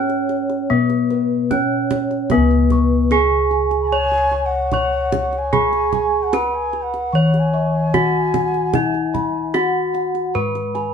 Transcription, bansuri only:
3.81 3.90 B5 medium
3.88 4.47 G#5 loud
4.46 5.40 F#5 loud
5.38 6.24 G#5 loud
6.23 6.56 F#5 medium
6.55 6.84 G#5 medium
6.82 7.41 F#5 medium
7.39 9.52 G#5 loud

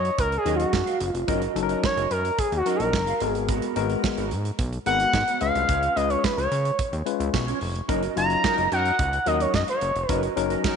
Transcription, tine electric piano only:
0.45 0.83 F#3 medium
0.45 0.83 C#4 medium
0.45 0.83 D#4 medium
0.45 0.83 G#4 medium
1.28 1.40 F#3 medium
1.28 1.41 C#4 medium
1.28 1.41 D#4 medium
1.28 1.41 A#4 loud
1.55 2.05 F#3 medium
1.55 2.05 C#4 medium
1.55 2.05 D#4 medium
1.55 1.63 A4 medium
1.63 2.09 A#4 loud
2.66 3.03 F#3 medium
2.66 3.03 C#4 medium
2.66 3.03 D#4 medium
2.66 3.03 A#4 medium
3.21 3.65 G#3 medium
3.21 3.65 B3 medium
3.21 3.65 F#4 medium
3.21 3.65 A#4 medium
3.76 4.25 G#3 medium
3.76 4.26 B3 medium
3.76 4.26 F#4 medium
3.76 4.26 A#4 loud
4.86 5.23 G#3 medium
4.86 5.23 B3 medium
4.86 5.23 F#4 medium
4.86 5.24 A#4 medium
5.41 5.85 G#3 medium
5.41 5.85 C#4 medium
5.41 5.85 F4 medium
5.41 5.85 B4 medium
5.96 6.46 G#3 medium
5.96 6.46 C#4 medium
5.96 6.46 F4 medium
5.96 6.46 B4 medium
7.06 7.43 G#3 medium
7.06 7.43 C#4 medium
7.06 7.43 F4 medium
7.06 7.43 B4 medium
7.34 7.85 C#6 medium
7.88 8.01 F#3 medium
7.88 8.01 C#4 medium
7.88 8.01 D#4 medium
7.88 8.01 A#4 medium
8.16 8.66 F#3 medium
8.16 8.66 C#4 medium
8.16 8.66 D#4 medium
8.16 8.66 F4 medium
9.26 9.63 F#3 medium
9.26 9.63 C#4 medium
9.26 9.64 D#4 medium
9.26 9.64 A#4 medium
10.09 10.21 F#3 medium
10.09 10.21 C#4 medium
10.09 10.21 D#4 medium
10.09 10.22 A#4 medium
10.36 10.76 F#3 medium
10.36 10.76 C#4 medium
10.36 10.76 D#4 medium
10.36 10.76 A#4 loud

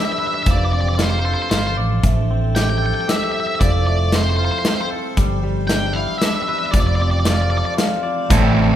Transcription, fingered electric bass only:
0.46 1.34 F1 medium
1.51 1.75 G1 medium
1.77 2.01 A1 medium
2.03 2.91 A1 medium
3.61 4.48 F1 medium
5.17 6.05 G1 medium
6.73 7.61 F1 medium
8.30 8.76 A1 loud

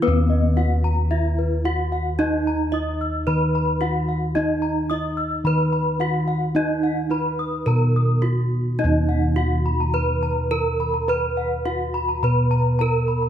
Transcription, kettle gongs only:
0.00 0.53 D#3 medium
0.00 1.61 B4 medium
0.07 3.26 D#2 loud
0.58 0.66 E4 medium
1.65 1.73 E4 soft
2.19 3.78 D#4 medium
2.73 2.81 E4 soft
3.27 4.86 D#3 medium
3.82 3.90 E4 soft
4.36 5.96 D#4 medium
4.91 4.99 E4 medium
5.45 7.07 D#3 medium
5.99 6.07 E4 soft
6.55 8.19 D#4 medium
7.10 7.18 E4 medium
7.66 9.33 B2 medium
8.22 8.30 E4 medium
8.79 10.46 D#4 medium
8.84 12.20 D#2 loud
9.37 9.45 E4 soft
10.51 10.59 E4 soft
11.08 12.75 B4 medium
11.66 11.74 E4 soft
12.23 13.29 B2 medium
12.80 12.88 E4 soft

